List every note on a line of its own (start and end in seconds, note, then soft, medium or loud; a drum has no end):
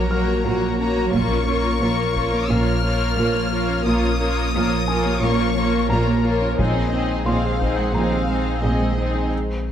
0.00 0.34 A#1 medium
0.00 1.09 A#1 medium
0.00 0.35 A#2 medium
0.00 1.10 F#3 medium
0.00 0.11 A#3 soft
0.00 1.10 A#3 medium
0.00 0.10 F#4 soft
0.00 0.11 A#4 soft
0.00 1.10 A#4 medium
0.00 0.11 C#5 soft
0.00 1.13 C#5 medium
0.00 0.78 A#5 medium
0.00 0.76 C6 soft
0.11 0.22 F#3 medium
0.11 0.45 A#3 soft
0.11 0.45 F#4 soft
0.11 0.45 A#4 soft
0.11 0.45 C#5 soft
0.11 2.12 F6 soft
0.44 1.02 A#1 medium
0.44 1.03 A#2 medium
0.44 0.79 A#3 soft
0.44 0.56 F#4 medium
0.44 0.79 F#4 soft
0.44 0.80 A#4 soft
0.44 0.80 C#5 soft
0.63 0.73 F#3 medium
0.79 1.13 A#3 soft
0.79 0.90 C#4 medium
0.79 1.14 F#4 soft
0.79 1.14 A#4 soft
0.79 1.14 C#5 soft
0.79 1.13 A#5 medium
0.97 1.07 A#3 medium
1.12 1.70 A#1 medium
1.12 6.55 A#1 medium
1.12 1.71 A#2 medium
1.12 6.60 F3 medium
1.12 1.24 A#3 medium
1.12 1.47 A#3 soft
1.12 6.56 A#3 medium
1.12 1.47 F4 medium
1.12 1.47 A#4 soft
1.12 6.56 A#4 medium
1.12 6.55 C#5 medium
1.12 1.47 C#5 soft
1.12 2.46 C#6 medium
1.12 taiko medium
1.31 1.41 C#4 medium
1.48 1.81 A#3 soft
1.48 1.58 C#4 soft
1.48 1.81 F4 soft
1.48 1.81 A#4 soft
1.48 1.81 C#5 medium
1.81 2.39 A#1 medium
1.81 2.39 A#2 medium
1.81 2.15 A#3 medium
1.81 1.93 A#3 medium
1.81 2.15 F4 soft
1.81 2.14 A#4 soft
1.81 2.15 C#5 soft
1.99 2.09 A#4 medium
2.16 2.48 A#3 soft
2.16 2.26 C#4 medium
2.16 2.48 F4 soft
2.16 2.49 A#4 soft
2.16 2.50 C#5 medium
2.16 taiko soft
2.33 2.43 A#3 medium
2.48 3.07 A#1 medium
2.48 3.08 A#2 medium
2.48 2.83 A#3 medium
2.48 2.60 C#4 medium
2.48 2.83 F4 medium
2.48 2.83 A#4 medium
2.48 2.83 C#5 medium
2.48 3.86 F6 loud
2.67 2.77 A#4 medium
2.84 2.95 A#3 medium
2.84 3.18 A#3 medium
2.84 3.18 F4 medium
2.84 3.18 A#4 medium
2.84 3.18 C#5 medium
3.18 3.75 A#1 medium
3.18 3.76 A#2 medium
3.18 3.50 A#3 medium
3.18 3.50 F4 soft
3.18 3.29 A#4 soft
3.18 3.51 A#4 soft
3.18 3.51 C#5 medium
3.35 3.46 A#3 medium
3.51 3.85 A#3 soft
3.51 3.85 F4 medium
3.51 3.62 F4 medium
3.51 3.85 A#4 medium
3.51 3.85 C#5 medium
3.70 3.80 C#4 medium
3.86 4.44 A#1 medium
3.86 4.44 A#2 medium
3.86 4.18 A#3 medium
3.86 3.97 A#3 medium
3.86 4.18 F4 medium
3.86 4.19 A#4 medium
3.86 4.19 C#5 medium
3.86 5.20 D#6 medium
4.04 4.14 C#4 medium
4.19 4.53 A#3 soft
4.19 4.31 C#4 soft
4.19 4.52 F4 soft
4.19 4.53 A#4 medium
4.19 4.53 C#5 medium
4.54 5.12 A#1 medium
4.54 5.12 A#2 medium
4.54 4.88 A#3 medium
4.54 4.65 A#3 medium
4.54 4.87 F4 soft
4.54 4.87 A#4 medium
4.54 4.88 C#5 medium
4.72 4.82 A#4 medium
4.88 5.22 A#3 medium
4.88 4.99 C#4 medium
4.88 5.22 F4 medium
4.88 5.22 A#4 medium
4.88 5.21 C#5 medium
4.88 6.89 G#5 soft
5.06 5.16 A#3 medium
5.23 5.80 A#1 medium
5.23 5.80 A#2 medium
5.23 5.55 A#3 medium
5.23 5.33 C#4 medium
5.23 5.55 F4 medium
5.23 5.56 A#4 medium
5.23 5.56 C#5 medium
5.23 5.91 C#6 medium
5.40 5.50 A#4 medium
5.56 5.89 A#3 medium
5.56 5.67 A#3 medium
5.56 5.89 F4 medium
5.56 5.90 A#4 medium
5.56 5.90 C#5 medium
5.90 6.48 A#1 medium
5.90 6.48 A#2 medium
5.90 6.23 A#3 medium
5.90 6.23 F4 medium
5.90 6.01 A#4 medium
5.90 6.24 A#4 medium
5.90 6.24 C#5 soft
5.90 7.91 A#5 medium
5.90 6.24 A#5 medium
6.08 6.18 A#3 medium
6.24 6.58 A#3 soft
6.24 6.58 F4 soft
6.24 6.35 F4 medium
6.24 6.59 A#4 medium
6.24 6.59 C#5 medium
6.42 6.52 C#4 medium
6.58 7.16 A#1 medium
6.58 9.72 A#1 medium
6.58 7.16 A#2 medium
6.58 9.32 D#3 medium
6.58 6.69 G#3 medium
6.58 6.91 C4 medium
6.58 9.32 C4 medium
6.58 6.91 D#4 medium
6.58 9.32 G#4 medium
6.58 6.92 G#4 medium
6.58 9.32 C5 medium
6.58 6.92 C5 medium
6.58 7.22 D#5 medium
6.58 taiko medium
6.76 6.86 C4 medium
6.92 7.24 C4 soft
6.92 7.03 C4 medium
6.92 7.24 D#4 soft
6.92 7.26 G#4 soft
6.92 7.27 C5 medium
7.25 7.84 A#1 medium
7.25 7.84 A#2 medium
7.25 7.37 G#3 medium
7.25 7.59 C4 soft
7.25 7.59 D#4 soft
7.25 7.60 G#4 soft
7.25 9.28 C5 soft
7.25 7.60 C5 soft
7.25 7.77 F5 medium
7.25 9.27 C6 medium
7.45 7.55 G#4 medium
7.60 7.93 C4 soft
7.60 7.72 C4 medium
7.60 7.93 D#4 soft
7.60 7.94 G#4 soft
7.60 7.94 C5 soft
7.60 taiko soft
7.78 7.89 G#3 medium
7.78 7.95 F#5 medium
7.94 8.52 A#1 medium
7.94 8.52 A#2 medium
7.94 8.28 C4 soft
7.94 8.05 C4 medium
7.94 8.28 D#4 soft
7.94 8.29 G#4 soft
7.94 8.28 C5 soft
7.94 8.63 F5 medium
7.94 9.27 A#5 soft
8.12 8.23 G#4 soft
8.29 8.40 G#3 medium
8.29 8.62 C4 soft
8.29 8.62 D#4 soft
8.29 8.63 G#4 soft
8.29 8.63 C5 soft
8.62 9.20 A#1 medium
8.62 9.21 A#2 medium
8.62 8.97 C4 soft
8.62 8.97 D#4 soft
8.62 8.73 G#4 medium
8.62 8.96 G#4 soft
8.62 8.96 C5 soft
8.62 9.31 D#5 medium
8.80 8.91 G#3 medium
8.97 9.31 C4 soft
8.97 9.08 D#4 medium
8.97 9.31 D#4 soft
8.97 9.31 G#4 soft
8.97 9.31 C5 soft
9.14 9.25 C4 medium